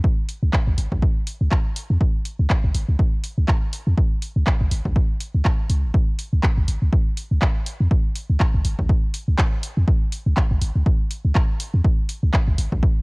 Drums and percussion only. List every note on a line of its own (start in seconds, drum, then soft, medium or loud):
0.04 kick loud
0.29 open hi-hat medium
0.53 kick loud
0.53 clap medium
0.78 open hi-hat medium
0.92 kick medium
1.02 kick loud
1.27 open hi-hat medium
1.52 kick loud
1.52 clap medium
1.76 open hi-hat medium
2.01 kick loud
2.25 open hi-hat medium
2.50 kick loud
2.50 clap medium
2.75 open hi-hat medium
2.99 kick loud
3.24 open hi-hat medium
3.48 kick loud
3.48 clap medium
3.73 open hi-hat medium
3.98 kick loud
4.22 open hi-hat medium
4.47 kick loud
4.47 clap medium
4.71 open hi-hat medium
4.85 kick medium
4.96 kick loud
5.20 open hi-hat medium
5.45 kick loud
5.45 clap medium
5.70 open hi-hat medium
5.94 kick loud
6.19 open hi-hat medium
6.43 kick loud
6.43 clap medium
6.68 open hi-hat medium
6.93 kick loud
7.17 open hi-hat medium
7.42 kick loud
7.42 clap medium
7.66 open hi-hat medium
7.91 kick loud
8.16 open hi-hat medium
8.40 kick loud
8.40 clap medium
8.65 open hi-hat medium
8.79 kick medium
8.89 kick loud
9.14 open hi-hat medium
9.39 kick loud
9.39 clap loud
9.63 open hi-hat loud
9.88 kick loud
10.12 open hi-hat medium
10.37 kick loud
10.37 clap loud
10.61 open hi-hat medium
10.86 kick loud
11.11 open hi-hat medium
11.35 kick loud
11.35 clap medium
11.60 open hi-hat loud
11.84 kick loud
12.09 open hi-hat loud
12.34 kick loud
12.34 clap medium
12.58 open hi-hat medium
12.72 kick medium
12.83 kick loud